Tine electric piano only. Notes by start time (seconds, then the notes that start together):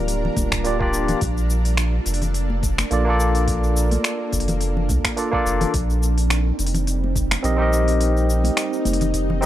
Already playing: A#3 D4 F4 G4 D5
0.64 A#3 D4 F4 G4 D5
0.79 A#3 D4 F4 G4 D5
2.91 A#3 D4 F4 A4 D5
3.05 A#3 D4 F4 A4
3.10 D5
5.16 A#3 D4 F4 A4 D5
5.32 A#3 D4 F4 A4 D5
7.43 C4 D#4 G4 A#4 D#5
7.57 C4 D#4 G4
7.61 A#4 D#5
9.41 C4 D#4 G4